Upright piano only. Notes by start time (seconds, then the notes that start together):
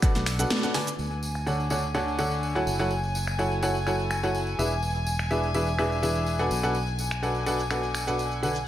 0.03 B2 D4 A4 B4 F#5
0.39 B2 D4 A4 B4 F#5
0.50 B2 D4 A4 B4 A5
0.63 B2 D4 A4 B4 F#5
0.74 D3 D4 A4 B4 G#5
1.46 D3 D4 A4 C#5 F#5
1.70 D3 D4 A4 C#5 F#5
1.95 D3 D4 A4 C#5 F#5
2.19 D3 D4 A4 C#5 F#5
2.55 F#3 E4 A4 C#5 F#5
2.79 F#3 E4 A4 C#5 F#5
3.39 F#3 E4 A4 C#5 F#5
3.63 F#3 E4 A4 C#5 F#5
3.87 F#3 E4 A4 C#5 F#5
4.23 F#3 E4 A4 C#5 F#5
4.59 E3 D4 G#4 B4 E5
5.31 E3 D4 G#4 B4 E5
5.55 E3 D4 G#4 B4 E5
5.79 E3 D4 G#4 B4 E5
6.03 E3 D4 G#4 B4 E5
6.39 B2 D4 A4 B4 F#5
6.63 B2 D4 A4 B4 F#5
7.22 B2 D4 A4 B4 F#5
7.46 B2 D4 A4 B4 F#5
7.70 B2 D4 A4 B4 F#5
8.07 B2 D4 A4 B4 F#5
8.43 D3 D4 A4 B4 F#5